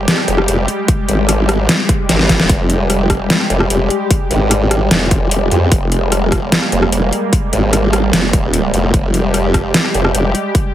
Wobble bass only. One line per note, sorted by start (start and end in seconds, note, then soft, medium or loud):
0.28 0.47 F1 medium
0.48 0.67 F1 medium
1.09 1.67 G#1 loud
2.09 2.38 G#1 loud
2.40 2.48 D#1 loud
2.49 3.28 F1 loud
3.50 3.69 F1 loud
3.70 3.89 F1 loud
4.31 4.90 G#1 loud
4.91 5.50 F1 loud
5.51 5.70 F2 loud
5.72 6.51 F1 loud
6.72 6.91 F1 loud
6.92 7.11 F1 loud
7.53 8.12 G#1 medium
8.13 8.32 F1 loud
8.33 8.72 D#1 loud
8.74 8.92 F1 loud
8.94 9.73 F1 loud
9.94 10.13 F1 medium
10.15 10.33 F1 medium